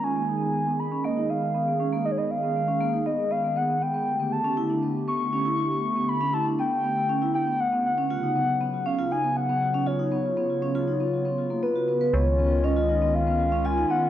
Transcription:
0.00 4.03 D#3 medium
0.00 4.03 G#3 medium
0.00 0.09 C#4 medium
0.00 4.03 G#4 medium
0.00 0.81 G#5 loud
0.16 0.26 A#3 medium
0.29 0.39 D#4 medium
0.41 0.51 B3 medium
0.67 0.79 B3 medium
0.79 1.06 B5 loud
0.92 0.98 C#4 medium
1.04 1.14 A#3 medium
1.04 1.31 D#5 medium
1.17 1.27 D#4 medium
1.30 1.40 B3 medium
1.30 2.05 F5 loud
1.55 1.67 B3 medium
1.80 1.86 C#4 medium
1.93 2.03 A#3 loud
2.05 2.15 D#4 medium
2.05 2.13 D#5 medium
2.11 2.19 C#5 medium
2.18 2.28 B3 medium
2.18 2.32 D#5 loud
2.31 3.08 F5 loud
2.43 2.55 B3 medium
2.68 2.74 C#4 loud
2.81 2.91 A#3 medium
2.93 3.03 D#4 medium
3.06 3.16 B3 medium
3.06 3.33 D#5 medium
3.31 3.41 B3 medium
3.31 3.58 F5 medium
3.56 3.62 B3 medium
3.56 3.84 F#5 medium
3.82 3.92 B3 medium
3.82 4.34 G5 medium
3.94 4.04 B3 medium
4.07 8.06 D3 medium
4.07 8.06 A3 medium
4.07 12.10 B3 medium
4.07 8.06 G4 medium
4.19 4.31 B3 medium
4.32 4.83 A5 medium
4.45 4.51 C#4 medium
4.57 4.63 E4 medium
4.70 4.80 D4 medium
4.82 4.92 B3 medium
5.08 5.20 B3 medium
5.08 6.10 C#6 loud
5.33 5.39 C#4 medium
5.45 5.51 E4 medium
5.58 5.68 D4 medium
5.71 5.81 B3 medium
5.96 6.08 B3 medium
6.09 6.34 B5 loud
6.21 6.27 C#4 medium
6.33 6.40 E4 medium
6.33 6.45 A5 medium
6.46 6.56 D4 medium
6.59 6.69 B3 medium
6.59 7.31 G5 loud
6.84 6.96 B3 medium
7.09 7.15 C#4 medium
7.22 7.28 E4 medium
7.34 7.44 D4 medium
7.34 7.62 G5 medium
7.47 7.57 B3 medium
7.60 7.85 F#5 medium
7.72 7.84 B3 medium
7.85 8.88 F#5 loud
7.98 8.04 C#4 loud
8.10 12.10 C#3 medium
8.10 12.10 F#3 medium
8.10 8.16 F4 medium
8.23 8.33 D#4 medium
8.35 8.45 B3 medium
8.61 8.73 B3 medium
8.86 8.92 C#4 loud
8.86 9.13 F5 medium
8.98 9.04 F4 medium
9.11 9.21 D#4 medium
9.11 9.36 G#5 loud
9.24 9.34 B3 medium
9.36 9.88 F#5 loud
9.49 9.61 B3 medium
9.74 9.80 C#4 loud
9.86 9.93 F4 medium
9.86 11.63 C#5 medium
9.99 10.09 D#4 medium
10.12 10.22 B3 medium
10.12 12.12 F4 medium
10.37 10.49 B3 medium
10.62 10.68 C#4 medium
10.75 10.81 F4 loud
10.88 10.98 D#4 medium
11.00 11.10 B3 medium
11.25 11.37 B3 medium
11.50 11.60 A#3 medium
11.63 11.69 B3 medium
11.63 12.15 B4 medium
11.76 11.82 F#4 medium
11.88 11.98 B3 medium
12.01 12.07 B4 medium
12.14 13.85 C#2 loud
12.14 14.10 D#3 medium
12.14 14.10 G#3 medium
12.14 12.24 B3 medium
12.14 14.10 C#4 medium
12.14 14.10 F4 medium
12.14 12.66 C#5 loud
12.39 12.51 B3 medium
12.64 12.70 C#4 loud
12.64 13.16 D#5 loud
12.77 12.83 F4 loud
12.89 12.99 D#4 medium
13.02 13.12 B3 medium
13.15 13.67 F5 loud
13.27 13.39 B3 medium
13.52 13.58 C#4 loud
13.65 13.71 F4 loud
13.65 13.92 G#5 loud
13.77 13.87 D#4 medium
13.90 14.00 B3 medium
13.90 14.10 F#5 loud

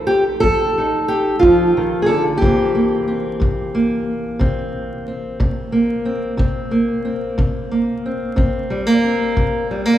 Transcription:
0.00 0.76 D#4 soft
0.00 0.39 A4 loud
0.07 0.23 G4 medium
0.40 1.03 F3 medium
0.40 1.74 A4 loud
0.40 kick medium
0.78 2.39 D#4 soft
1.08 1.39 G4 medium
1.39 2.01 F4 loud
1.39 kick medium
1.45 1.77 F3 medium
1.77 2.08 D#3 medium
2.02 2.09 G#4 medium
2.06 2.42 D3 medium
2.06 2.22 A4 medium
2.37 3.01 C3 medium
2.37 9.98 G4 medium
2.42 6.35 E3 soft
2.42 2.74 A#3 soft
2.42 3.07 C4 soft
2.42 kick medium
2.75 3.74 A#3 soft
3.08 4.40 C4 soft
3.40 4.00 C3 medium
3.40 kick medium
3.75 5.72 A#3 medium
4.39 5.00 C3 medium
4.39 5.07 C4 soft
4.39 kick medium
5.08 6.05 C4 soft
5.40 5.99 C3 medium
5.40 kick medium
5.72 6.40 A#3 soft
6.05 6.37 C4 soft
6.37 6.98 C3 medium
6.37 7.04 C4 soft
6.37 kick medium
6.71 7.70 A#3 soft
7.05 8.04 C4 soft
7.38 7.97 C3 medium
7.38 kick medium
7.71 8.70 A#3 soft
8.06 8.35 C4 soft
8.36 8.96 C3 medium
8.36 9.03 C4 soft
8.36 kick medium
8.70 8.86 G3 medium
8.86 9.69 A#3 soft
9.04 9.98 C4 soft
9.36 9.96 C3 medium
9.36 kick medium
9.71 9.85 G3 soft
9.85 9.98 A#3 soft

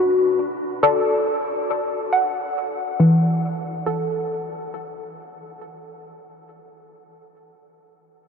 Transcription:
0.00 0.48 B2 medium
0.00 0.34 D4 medium
0.00 0.78 F#4 medium
0.83 3.53 A4 medium
0.83 2.30 D5 medium
2.13 3.60 F#5 soft
3.00 4.47 E3 medium
3.86 7.42 A4 medium

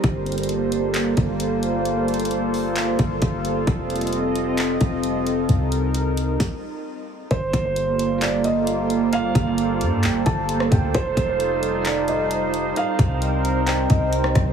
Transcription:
0.00 1.13 G1 loud
0.00 6.36 G3 medium
0.00 3.64 A#3 medium
0.00 5.45 F4 medium
0.00 5.45 A4 medium
0.00 kick loud
0.00 closed hi-hat medium
0.04 3.64 C5 medium
0.26 closed hi-hat soft
0.32 closed hi-hat soft
0.38 closed hi-hat medium
0.43 closed hi-hat medium
0.49 closed hi-hat medium
0.72 closed hi-hat medium
0.94 clap loud
0.94 closed hi-hat medium
1.17 2.95 G1 loud
1.17 kick medium
1.17 closed hi-hat medium
1.40 closed hi-hat medium
1.63 closed hi-hat medium
1.85 closed hi-hat medium
2.08 closed hi-hat soft
2.14 closed hi-hat soft
2.20 closed hi-hat medium
2.25 closed hi-hat medium
2.31 closed hi-hat medium
2.54 open hi-hat medium
2.76 clap loud
2.76 closed hi-hat medium
2.99 3.21 G1 loud
2.99 kick medium
2.99 closed hi-hat medium
3.22 3.66 G1 loud
3.22 kick loud
3.22 closed hi-hat medium
3.45 closed hi-hat medium
3.67 4.77 F1 loud
3.67 6.37 C4 medium
3.67 6.37 D#5 medium
3.67 kick loud
3.67 closed hi-hat medium
3.90 closed hi-hat soft
3.96 closed hi-hat soft
4.01 closed hi-hat medium
4.07 closed hi-hat medium
4.13 closed hi-hat medium
4.36 closed hi-hat medium
4.58 clap loud
4.58 closed hi-hat medium
4.81 5.46 F1 loud
4.81 kick medium
4.81 closed hi-hat medium
5.03 closed hi-hat medium
5.27 closed hi-hat medium
5.49 6.36 C2 loud
5.49 6.39 D#4 medium
5.49 6.39 A#4 medium
5.49 closed hi-hat medium
5.72 closed hi-hat medium
5.94 closed hi-hat medium
6.17 closed hi-hat medium
6.40 kick loud
6.40 snare medium
7.31 7.53 G1 loud
7.31 10.91 G3 medium
7.31 10.91 A#3 medium
7.31 10.91 F4 medium
7.31 12.72 A4 medium
7.31 8.18 C5 loud
7.31 14.53 C5 loud
7.31 kick loud
7.31 closed hi-hat medium
7.53 9.31 G1 loud
7.53 kick loud
7.53 closed hi-hat medium
7.76 closed hi-hat medium
7.99 closed hi-hat medium
8.21 8.43 D5 medium
8.21 clap loud
8.21 closed hi-hat medium
8.44 9.09 D#5 medium
8.44 closed hi-hat medium
8.67 closed hi-hat medium
8.90 closed hi-hat medium
9.13 10.00 F5 loud
9.13 closed hi-hat medium
9.35 9.82 G1 loud
9.35 kick loud
9.35 closed hi-hat medium
9.58 closed hi-hat medium
9.81 10.05 G2 loud
9.81 closed hi-hat medium
10.03 10.25 G1 loud
10.03 10.26 G5 medium
10.03 clap loud
10.03 closed hi-hat medium
10.26 10.70 G1 loud
10.26 10.69 A5 medium
10.26 kick medium
10.26 closed hi-hat medium
10.49 closed hi-hat medium
10.60 cross-stick loud
10.72 10.94 D2 loud
10.72 10.94 G5 medium
10.72 kick loud
10.72 closed hi-hat medium
10.94 11.16 F1 loud
10.94 14.53 G3 medium
10.94 14.53 D#4 medium
10.94 12.75 F4 medium
10.94 11.82 C5 loud
10.94 kick loud
10.94 closed hi-hat medium
11.17 12.72 F1 loud
11.17 kick medium
11.17 closed hi-hat medium
11.40 closed hi-hat medium
11.63 closed hi-hat medium
11.85 12.07 D5 medium
11.85 clap loud
11.85 closed hi-hat medium
12.08 12.73 D#5 medium
12.08 closed hi-hat medium
12.31 closed hi-hat medium
12.54 closed hi-hat medium
12.76 14.53 C4 medium
12.76 14.53 A#4 medium
12.76 13.64 F5 loud
12.76 closed hi-hat medium
12.99 13.86 C2 loud
12.99 kick loud
12.99 closed hi-hat medium
13.22 closed hi-hat medium
13.45 closed hi-hat medium
13.67 13.89 G5 medium
13.67 clap loud
13.67 closed hi-hat medium
13.90 14.34 C2 loud
13.90 14.12 D#5 medium
13.90 kick medium
13.90 closed hi-hat medium
14.13 closed hi-hat medium
14.24 cross-stick loud
14.35 14.53 C2 loud
14.35 kick loud
14.35 cross-stick loud
14.35 closed hi-hat medium

